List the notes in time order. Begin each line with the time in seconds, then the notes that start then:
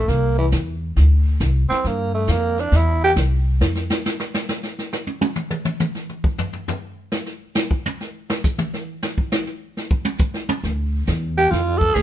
Already playing: A3
0.08 C2 A#3, brush sweep, kick, snare
0.38 E3
0.52 E2, kick, snare, hi-hat pedal
0.96 D2, brush sweep, kick, snare
1.40 C2, kick, snare, hi-hat pedal
1.69 C4, muted upright bass stroke, snare
1.84 G2 A#3, brush sweep, kick, snare
2.14 A3
2.27 F2 A#3, kick, snare, hi-hat pedal
2.58 D4, snare
2.72 E2, brush sweep, kick, snare
2.76 E4
3.04 G4
3.16 C2, kick, snare, hi-hat pedal
3.61 F2, snare
3.75 snare
3.90 snare
4.05 snare, hi-hat pedal
4.20 snare
4.34 snare
4.49 snare
4.63 snare
4.78 snare
4.92 snare, hi-hat pedal
5.07 high tom
5.21 high tom
5.36 mid tom
5.51 mid tom
5.65 mid tom
5.80 hi-hat pedal, mid tom
5.95 snare
6.09 mid tom
6.24 kick
6.38 floor tom
6.53 floor tom
6.68 floor tom, hi-hat pedal
7.12 snare
7.26 snare
7.55 snare, hi-hat pedal
7.71 kick
7.86 high tom
8.01 snare
8.30 snare
8.44 kick, hi-hat pedal
8.58 mid tom
8.74 snare
9.03 snare
9.18 kick
9.31 snare, hi-hat pedal
9.47 snare
9.77 snare
9.91 kick
10.05 high tom
10.18 kick, hi-hat pedal
10.34 snare
10.49 high tom
10.64 D2, brush sweep, kick, snare
11.07 E2, kick, snare, hi-hat pedal
11.37 G4, snare
11.51 F2 F4, brush sweep, kick, snare
11.78 A4, kick
11.94 D2 G#4, kick, snare, hi-hat pedal